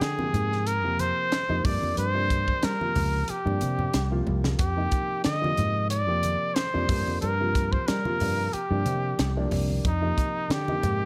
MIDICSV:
0, 0, Header, 1, 6, 480
1, 0, Start_track
1, 0, Tempo, 655738
1, 1446, Time_signature, 4, 2, 24, 8
1, 8091, End_track
2, 0, Start_track
2, 0, Title_t, "Trumpet"
2, 0, Program_c, 0, 56
2, 7, Note_on_c, 0, 68, 80
2, 491, Note_on_c, 0, 70, 84
2, 502, Note_off_c, 0, 68, 0
2, 732, Note_on_c, 0, 72, 91
2, 743, Note_off_c, 0, 70, 0
2, 1208, Note_on_c, 0, 74, 75
2, 1219, Note_off_c, 0, 72, 0
2, 1445, Note_off_c, 0, 74, 0
2, 1449, Note_on_c, 0, 72, 93
2, 1936, Note_on_c, 0, 70, 82
2, 1947, Note_off_c, 0, 72, 0
2, 2416, Note_on_c, 0, 67, 71
2, 2427, Note_off_c, 0, 70, 0
2, 3131, Note_off_c, 0, 67, 0
2, 3361, Note_on_c, 0, 67, 87
2, 3815, Note_off_c, 0, 67, 0
2, 3842, Note_on_c, 0, 75, 92
2, 4295, Note_off_c, 0, 75, 0
2, 4322, Note_on_c, 0, 74, 86
2, 4794, Note_on_c, 0, 72, 80
2, 4805, Note_off_c, 0, 74, 0
2, 5274, Note_off_c, 0, 72, 0
2, 5278, Note_on_c, 0, 70, 81
2, 5651, Note_on_c, 0, 72, 73
2, 5662, Note_off_c, 0, 70, 0
2, 5763, Note_on_c, 0, 70, 86
2, 5774, Note_off_c, 0, 72, 0
2, 6246, Note_on_c, 0, 67, 73
2, 6257, Note_off_c, 0, 70, 0
2, 6966, Note_off_c, 0, 67, 0
2, 7225, Note_on_c, 0, 63, 78
2, 7697, Note_on_c, 0, 67, 85
2, 7708, Note_off_c, 0, 63, 0
2, 8091, Note_off_c, 0, 67, 0
2, 8091, End_track
3, 0, Start_track
3, 0, Title_t, "Grand piano"
3, 0, Program_c, 1, 0
3, 128, Note_on_c, 1, 48, 67
3, 135, Note_on_c, 1, 53, 56
3, 135, Note_on_c, 1, 60, 73
3, 137, Note_on_c, 1, 58, 64
3, 494, Note_off_c, 1, 48, 0
3, 497, Note_off_c, 1, 53, 0
3, 497, Note_off_c, 1, 60, 0
3, 498, Note_off_c, 1, 58, 0
3, 612, Note_on_c, 1, 48, 64
3, 616, Note_on_c, 1, 58, 58
3, 617, Note_on_c, 1, 53, 61
3, 621, Note_on_c, 1, 60, 68
3, 976, Note_off_c, 1, 48, 0
3, 978, Note_off_c, 1, 53, 0
3, 978, Note_off_c, 1, 58, 0
3, 980, Note_off_c, 1, 60, 0
3, 1088, Note_on_c, 1, 48, 71
3, 1088, Note_on_c, 1, 53, 63
3, 1091, Note_on_c, 1, 58, 65
3, 1096, Note_on_c, 1, 63, 77
3, 1192, Note_off_c, 1, 48, 0
3, 1195, Note_off_c, 1, 53, 0
3, 1196, Note_off_c, 1, 58, 0
3, 1203, Note_on_c, 1, 48, 64
3, 1206, Note_off_c, 1, 63, 0
3, 1206, Note_on_c, 1, 53, 64
3, 1207, Note_on_c, 1, 58, 65
3, 1209, Note_on_c, 1, 62, 75
3, 1496, Note_off_c, 1, 48, 0
3, 1498, Note_off_c, 1, 53, 0
3, 1498, Note_off_c, 1, 58, 0
3, 1499, Note_off_c, 1, 62, 0
3, 1569, Note_on_c, 1, 53, 59
3, 1570, Note_on_c, 1, 48, 63
3, 1571, Note_on_c, 1, 58, 54
3, 1576, Note_on_c, 1, 62, 68
3, 1935, Note_off_c, 1, 48, 0
3, 1935, Note_off_c, 1, 53, 0
3, 1935, Note_off_c, 1, 58, 0
3, 1938, Note_off_c, 1, 62, 0
3, 2050, Note_on_c, 1, 48, 59
3, 2056, Note_on_c, 1, 53, 58
3, 2056, Note_on_c, 1, 58, 58
3, 2058, Note_on_c, 1, 65, 69
3, 2403, Note_off_c, 1, 48, 0
3, 2407, Note_off_c, 1, 53, 0
3, 2407, Note_off_c, 1, 58, 0
3, 2407, Note_off_c, 1, 65, 0
3, 2525, Note_on_c, 1, 48, 53
3, 2530, Note_on_c, 1, 53, 49
3, 2530, Note_on_c, 1, 58, 54
3, 2531, Note_on_c, 1, 62, 64
3, 2892, Note_off_c, 1, 48, 0
3, 2895, Note_off_c, 1, 53, 0
3, 2895, Note_off_c, 1, 58, 0
3, 2895, Note_off_c, 1, 62, 0
3, 3000, Note_on_c, 1, 48, 75
3, 3009, Note_on_c, 1, 53, 61
3, 3009, Note_on_c, 1, 58, 64
3, 3013, Note_on_c, 1, 65, 74
3, 3359, Note_off_c, 1, 48, 0
3, 3363, Note_off_c, 1, 53, 0
3, 3363, Note_off_c, 1, 58, 0
3, 3366, Note_off_c, 1, 65, 0
3, 3485, Note_on_c, 1, 48, 55
3, 3486, Note_on_c, 1, 53, 53
3, 3489, Note_on_c, 1, 58, 54
3, 3495, Note_on_c, 1, 63, 66
3, 3853, Note_off_c, 1, 48, 0
3, 3853, Note_off_c, 1, 53, 0
3, 3855, Note_off_c, 1, 58, 0
3, 3858, Note_off_c, 1, 63, 0
3, 3964, Note_on_c, 1, 48, 62
3, 3964, Note_on_c, 1, 53, 59
3, 3965, Note_on_c, 1, 58, 57
3, 3968, Note_on_c, 1, 65, 71
3, 4332, Note_off_c, 1, 48, 0
3, 4332, Note_off_c, 1, 53, 0
3, 4333, Note_off_c, 1, 58, 0
3, 4334, Note_off_c, 1, 65, 0
3, 4442, Note_on_c, 1, 48, 62
3, 4447, Note_on_c, 1, 53, 56
3, 4453, Note_on_c, 1, 58, 57
3, 4454, Note_on_c, 1, 60, 70
3, 4811, Note_off_c, 1, 48, 0
3, 4814, Note_off_c, 1, 53, 0
3, 4817, Note_off_c, 1, 58, 0
3, 4817, Note_off_c, 1, 60, 0
3, 4930, Note_on_c, 1, 53, 65
3, 4931, Note_on_c, 1, 48, 69
3, 4933, Note_on_c, 1, 62, 80
3, 4934, Note_on_c, 1, 58, 66
3, 5029, Note_off_c, 1, 48, 0
3, 5031, Note_off_c, 1, 53, 0
3, 5034, Note_off_c, 1, 58, 0
3, 5034, Note_off_c, 1, 62, 0
3, 5040, Note_on_c, 1, 48, 66
3, 5042, Note_on_c, 1, 53, 68
3, 5045, Note_on_c, 1, 58, 68
3, 5045, Note_on_c, 1, 62, 73
3, 5335, Note_off_c, 1, 48, 0
3, 5336, Note_off_c, 1, 53, 0
3, 5337, Note_off_c, 1, 58, 0
3, 5338, Note_off_c, 1, 62, 0
3, 5419, Note_on_c, 1, 48, 64
3, 5420, Note_on_c, 1, 58, 59
3, 5422, Note_on_c, 1, 53, 56
3, 5426, Note_on_c, 1, 65, 69
3, 5780, Note_off_c, 1, 48, 0
3, 5780, Note_off_c, 1, 58, 0
3, 5781, Note_off_c, 1, 53, 0
3, 5783, Note_off_c, 1, 65, 0
3, 5895, Note_on_c, 1, 53, 56
3, 5897, Note_on_c, 1, 48, 63
3, 5899, Note_on_c, 1, 65, 74
3, 5904, Note_on_c, 1, 58, 56
3, 6246, Note_off_c, 1, 53, 0
3, 6247, Note_off_c, 1, 48, 0
3, 6248, Note_off_c, 1, 65, 0
3, 6250, Note_off_c, 1, 58, 0
3, 6372, Note_on_c, 1, 48, 63
3, 6374, Note_on_c, 1, 53, 55
3, 6375, Note_on_c, 1, 58, 53
3, 6378, Note_on_c, 1, 62, 62
3, 6736, Note_off_c, 1, 48, 0
3, 6737, Note_off_c, 1, 53, 0
3, 6738, Note_off_c, 1, 58, 0
3, 6739, Note_off_c, 1, 62, 0
3, 6855, Note_on_c, 1, 48, 75
3, 6856, Note_on_c, 1, 53, 71
3, 6858, Note_on_c, 1, 58, 74
3, 6860, Note_on_c, 1, 62, 88
3, 7206, Note_off_c, 1, 48, 0
3, 7207, Note_off_c, 1, 53, 0
3, 7208, Note_off_c, 1, 58, 0
3, 7209, Note_off_c, 1, 62, 0
3, 7329, Note_on_c, 1, 53, 58
3, 7331, Note_on_c, 1, 48, 58
3, 7334, Note_on_c, 1, 58, 56
3, 7337, Note_on_c, 1, 63, 70
3, 7694, Note_off_c, 1, 53, 0
3, 7696, Note_off_c, 1, 48, 0
3, 7697, Note_off_c, 1, 58, 0
3, 7698, Note_off_c, 1, 63, 0
3, 7815, Note_on_c, 1, 48, 70
3, 7822, Note_on_c, 1, 53, 58
3, 7822, Note_on_c, 1, 58, 62
3, 7824, Note_on_c, 1, 63, 72
3, 8091, Note_off_c, 1, 48, 0
3, 8091, Note_off_c, 1, 53, 0
3, 8091, Note_off_c, 1, 58, 0
3, 8091, Note_off_c, 1, 63, 0
3, 8091, End_track
4, 0, Start_track
4, 0, Title_t, "Fretless electric bass"
4, 0, Program_c, 2, 35
4, 7, Note_on_c, 2, 50, 80
4, 200, Note_off_c, 2, 50, 0
4, 243, Note_on_c, 2, 44, 82
4, 617, Note_off_c, 2, 44, 0
4, 617, Note_on_c, 2, 41, 79
4, 810, Note_off_c, 2, 41, 0
4, 1094, Note_on_c, 2, 41, 71
4, 1184, Note_off_c, 2, 41, 0
4, 1206, Note_on_c, 2, 43, 69
4, 1310, Note_off_c, 2, 43, 0
4, 1336, Note_on_c, 2, 41, 66
4, 1425, Note_off_c, 2, 41, 0
4, 1445, Note_on_c, 2, 43, 81
4, 1834, Note_off_c, 2, 43, 0
4, 1931, Note_on_c, 2, 55, 72
4, 2033, Note_off_c, 2, 55, 0
4, 2165, Note_on_c, 2, 37, 69
4, 2360, Note_off_c, 2, 37, 0
4, 2529, Note_on_c, 2, 43, 81
4, 2622, Note_off_c, 2, 43, 0
4, 2650, Note_on_c, 2, 48, 81
4, 2843, Note_off_c, 2, 48, 0
4, 2885, Note_on_c, 2, 36, 83
4, 3080, Note_off_c, 2, 36, 0
4, 3129, Note_on_c, 2, 36, 66
4, 3322, Note_off_c, 2, 36, 0
4, 3361, Note_on_c, 2, 41, 77
4, 3558, Note_off_c, 2, 41, 0
4, 3847, Note_on_c, 2, 50, 77
4, 4041, Note_off_c, 2, 50, 0
4, 4084, Note_on_c, 2, 44, 81
4, 4454, Note_off_c, 2, 44, 0
4, 4454, Note_on_c, 2, 41, 74
4, 4649, Note_off_c, 2, 41, 0
4, 4939, Note_on_c, 2, 41, 77
4, 5027, Note_off_c, 2, 41, 0
4, 5045, Note_on_c, 2, 43, 73
4, 5150, Note_off_c, 2, 43, 0
4, 5176, Note_on_c, 2, 41, 70
4, 5266, Note_off_c, 2, 41, 0
4, 5289, Note_on_c, 2, 43, 78
4, 5677, Note_off_c, 2, 43, 0
4, 5775, Note_on_c, 2, 55, 77
4, 5876, Note_off_c, 2, 55, 0
4, 6009, Note_on_c, 2, 43, 72
4, 6202, Note_off_c, 2, 43, 0
4, 6372, Note_on_c, 2, 43, 88
4, 6463, Note_off_c, 2, 43, 0
4, 6484, Note_on_c, 2, 48, 86
4, 6679, Note_off_c, 2, 48, 0
4, 6727, Note_on_c, 2, 36, 92
4, 6921, Note_off_c, 2, 36, 0
4, 6971, Note_on_c, 2, 36, 72
4, 7163, Note_off_c, 2, 36, 0
4, 7206, Note_on_c, 2, 41, 78
4, 7400, Note_off_c, 2, 41, 0
4, 7683, Note_on_c, 2, 50, 81
4, 7879, Note_off_c, 2, 50, 0
4, 7932, Note_on_c, 2, 44, 80
4, 8091, Note_off_c, 2, 44, 0
4, 8091, End_track
5, 0, Start_track
5, 0, Title_t, "Muted fretless electric bass strokes"
5, 2411, Note_on_c, 9, 29, 30
5, 2485, Note_off_c, 9, 29, 0
5, 6250, Note_on_c, 9, 29, 31
5, 6323, Note_off_c, 9, 29, 0
5, 8091, End_track
6, 0, Start_track
6, 0, Title_t, "Drums"
6, 10, Note_on_c, 9, 42, 67
6, 14, Note_on_c, 9, 38, 88
6, 83, Note_off_c, 9, 42, 0
6, 87, Note_off_c, 9, 38, 0
6, 136, Note_on_c, 9, 63, 62
6, 209, Note_off_c, 9, 63, 0
6, 250, Note_on_c, 9, 42, 50
6, 250, Note_on_c, 9, 64, 65
6, 323, Note_off_c, 9, 42, 0
6, 323, Note_off_c, 9, 64, 0
6, 384, Note_on_c, 9, 38, 30
6, 457, Note_off_c, 9, 38, 0
6, 487, Note_on_c, 9, 42, 70
6, 560, Note_off_c, 9, 42, 0
6, 727, Note_on_c, 9, 42, 53
6, 728, Note_on_c, 9, 63, 58
6, 800, Note_off_c, 9, 42, 0
6, 802, Note_off_c, 9, 63, 0
6, 965, Note_on_c, 9, 42, 65
6, 969, Note_on_c, 9, 38, 89
6, 1038, Note_off_c, 9, 42, 0
6, 1042, Note_off_c, 9, 38, 0
6, 1206, Note_on_c, 9, 36, 93
6, 1206, Note_on_c, 9, 46, 64
6, 1207, Note_on_c, 9, 64, 58
6, 1280, Note_off_c, 9, 36, 0
6, 1280, Note_off_c, 9, 46, 0
6, 1280, Note_off_c, 9, 64, 0
6, 1341, Note_on_c, 9, 63, 51
6, 1414, Note_off_c, 9, 63, 0
6, 1444, Note_on_c, 9, 42, 74
6, 1517, Note_off_c, 9, 42, 0
6, 1686, Note_on_c, 9, 36, 75
6, 1688, Note_on_c, 9, 42, 51
6, 1760, Note_off_c, 9, 36, 0
6, 1761, Note_off_c, 9, 42, 0
6, 1814, Note_on_c, 9, 36, 58
6, 1887, Note_off_c, 9, 36, 0
6, 1922, Note_on_c, 9, 42, 73
6, 1926, Note_on_c, 9, 38, 93
6, 1995, Note_off_c, 9, 42, 0
6, 1999, Note_off_c, 9, 38, 0
6, 2058, Note_on_c, 9, 63, 57
6, 2132, Note_off_c, 9, 63, 0
6, 2163, Note_on_c, 9, 46, 55
6, 2167, Note_on_c, 9, 63, 57
6, 2167, Note_on_c, 9, 64, 61
6, 2236, Note_off_c, 9, 46, 0
6, 2240, Note_off_c, 9, 63, 0
6, 2240, Note_off_c, 9, 64, 0
6, 2400, Note_on_c, 9, 42, 78
6, 2473, Note_off_c, 9, 42, 0
6, 2540, Note_on_c, 9, 63, 53
6, 2613, Note_off_c, 9, 63, 0
6, 2642, Note_on_c, 9, 42, 55
6, 2645, Note_on_c, 9, 63, 56
6, 2715, Note_off_c, 9, 42, 0
6, 2718, Note_off_c, 9, 63, 0
6, 2772, Note_on_c, 9, 64, 54
6, 2846, Note_off_c, 9, 64, 0
6, 2881, Note_on_c, 9, 42, 69
6, 2884, Note_on_c, 9, 38, 89
6, 2954, Note_off_c, 9, 42, 0
6, 2958, Note_off_c, 9, 38, 0
6, 3123, Note_on_c, 9, 48, 46
6, 3125, Note_on_c, 9, 64, 56
6, 3196, Note_off_c, 9, 48, 0
6, 3199, Note_off_c, 9, 64, 0
6, 3252, Note_on_c, 9, 38, 72
6, 3259, Note_on_c, 9, 63, 55
6, 3325, Note_off_c, 9, 38, 0
6, 3333, Note_off_c, 9, 63, 0
6, 3358, Note_on_c, 9, 42, 73
6, 3362, Note_on_c, 9, 36, 98
6, 3432, Note_off_c, 9, 42, 0
6, 3435, Note_off_c, 9, 36, 0
6, 3598, Note_on_c, 9, 42, 50
6, 3601, Note_on_c, 9, 36, 73
6, 3671, Note_off_c, 9, 42, 0
6, 3674, Note_off_c, 9, 36, 0
6, 3836, Note_on_c, 9, 42, 64
6, 3840, Note_on_c, 9, 38, 90
6, 3909, Note_off_c, 9, 42, 0
6, 3913, Note_off_c, 9, 38, 0
6, 3983, Note_on_c, 9, 63, 55
6, 4056, Note_off_c, 9, 63, 0
6, 4080, Note_on_c, 9, 42, 48
6, 4090, Note_on_c, 9, 64, 62
6, 4154, Note_off_c, 9, 42, 0
6, 4163, Note_off_c, 9, 64, 0
6, 4320, Note_on_c, 9, 42, 73
6, 4393, Note_off_c, 9, 42, 0
6, 4560, Note_on_c, 9, 42, 52
6, 4570, Note_on_c, 9, 63, 60
6, 4633, Note_off_c, 9, 42, 0
6, 4643, Note_off_c, 9, 63, 0
6, 4801, Note_on_c, 9, 42, 65
6, 4804, Note_on_c, 9, 38, 86
6, 4874, Note_off_c, 9, 42, 0
6, 4878, Note_off_c, 9, 38, 0
6, 5042, Note_on_c, 9, 46, 65
6, 5044, Note_on_c, 9, 36, 94
6, 5052, Note_on_c, 9, 64, 62
6, 5115, Note_off_c, 9, 46, 0
6, 5117, Note_off_c, 9, 36, 0
6, 5125, Note_off_c, 9, 64, 0
6, 5179, Note_on_c, 9, 63, 59
6, 5253, Note_off_c, 9, 63, 0
6, 5285, Note_on_c, 9, 42, 75
6, 5359, Note_off_c, 9, 42, 0
6, 5528, Note_on_c, 9, 36, 70
6, 5528, Note_on_c, 9, 42, 52
6, 5601, Note_off_c, 9, 36, 0
6, 5601, Note_off_c, 9, 42, 0
6, 5655, Note_on_c, 9, 36, 57
6, 5729, Note_off_c, 9, 36, 0
6, 5767, Note_on_c, 9, 42, 71
6, 5771, Note_on_c, 9, 38, 91
6, 5840, Note_off_c, 9, 42, 0
6, 5844, Note_off_c, 9, 38, 0
6, 5895, Note_on_c, 9, 63, 66
6, 5969, Note_off_c, 9, 63, 0
6, 6004, Note_on_c, 9, 46, 58
6, 6010, Note_on_c, 9, 64, 64
6, 6077, Note_off_c, 9, 46, 0
6, 6084, Note_off_c, 9, 64, 0
6, 6247, Note_on_c, 9, 42, 80
6, 6320, Note_off_c, 9, 42, 0
6, 6484, Note_on_c, 9, 42, 54
6, 6485, Note_on_c, 9, 63, 64
6, 6557, Note_off_c, 9, 42, 0
6, 6559, Note_off_c, 9, 63, 0
6, 6726, Note_on_c, 9, 42, 74
6, 6730, Note_on_c, 9, 38, 90
6, 6799, Note_off_c, 9, 42, 0
6, 6803, Note_off_c, 9, 38, 0
6, 6963, Note_on_c, 9, 46, 70
6, 6968, Note_on_c, 9, 64, 63
6, 7036, Note_off_c, 9, 46, 0
6, 7041, Note_off_c, 9, 64, 0
6, 7100, Note_on_c, 9, 63, 60
6, 7173, Note_off_c, 9, 63, 0
6, 7209, Note_on_c, 9, 36, 100
6, 7209, Note_on_c, 9, 42, 76
6, 7282, Note_off_c, 9, 36, 0
6, 7282, Note_off_c, 9, 42, 0
6, 7449, Note_on_c, 9, 36, 71
6, 7453, Note_on_c, 9, 42, 49
6, 7522, Note_off_c, 9, 36, 0
6, 7526, Note_off_c, 9, 42, 0
6, 7689, Note_on_c, 9, 42, 70
6, 7693, Note_on_c, 9, 38, 101
6, 7762, Note_off_c, 9, 42, 0
6, 7766, Note_off_c, 9, 38, 0
6, 7819, Note_on_c, 9, 63, 63
6, 7892, Note_off_c, 9, 63, 0
6, 7930, Note_on_c, 9, 42, 47
6, 7930, Note_on_c, 9, 64, 65
6, 8003, Note_off_c, 9, 42, 0
6, 8003, Note_off_c, 9, 64, 0
6, 8091, End_track
0, 0, End_of_file